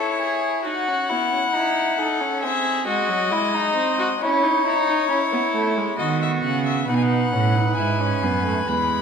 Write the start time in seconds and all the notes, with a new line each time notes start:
Already playing: E4 A4 C#5
0.21 G#4
0.65 D#4 F#4 F#5
0.88 C#4
1.09 B3 E4
1.33 C#4
1.54 D#4 E4
1.98 D#4 A4
2.21 C#4
2.43 C4 G#4 E5
2.87 G#3 F#4 D#5
3.09 F#3
3.31 G#3 E4
3.54 D#4
3.75 C4
3.99 F#4
4.20 C#4 E4 C#5
4.43 D#4
4.65 D#4 E4
4.88 D#4
5.10 C#4 E4
5.32 B3
5.54 A3
5.77 G#3
5.99 D#3 B3 F#4 D#5
6.22 E5
6.44 C#3 F#5
6.66 E5
6.89 B2 D#4 B4 F#5
6.96 G#5
7.03 F#5
7.33 A2 C#4
7.56 D#4
7.77 G#2 E4 G#5
8.00 C#4
8.22 F#2 B3
8.45 A3
8.66 E2 G#3 B5